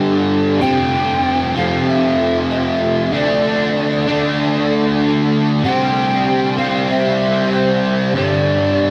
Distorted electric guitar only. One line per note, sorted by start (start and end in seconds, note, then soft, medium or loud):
0.00 0.60 G2 medium
0.00 0.60 D3 medium
0.00 0.59 G3 medium
0.61 1.53 F2 loud
0.61 1.54 C3 loud
0.61 1.54 F3 loud
1.54 3.12 F2 medium
1.54 3.11 C3 medium
1.54 3.10 F3 medium
3.12 4.05 D3 loud
3.12 4.06 A3 loud
3.12 4.06 D4 loud
4.07 5.63 D3 medium
4.07 5.63 A3 medium
4.07 5.62 D4 medium
5.64 6.56 C3 medium
5.64 6.58 G3 loud
5.64 6.56 C4 loud
6.57 8.14 C3 medium
6.57 8.13 G3 medium
6.57 8.12 C4 medium
8.14 8.90 G2 medium
8.14 8.90 D3 loud
8.14 8.90 G3 loud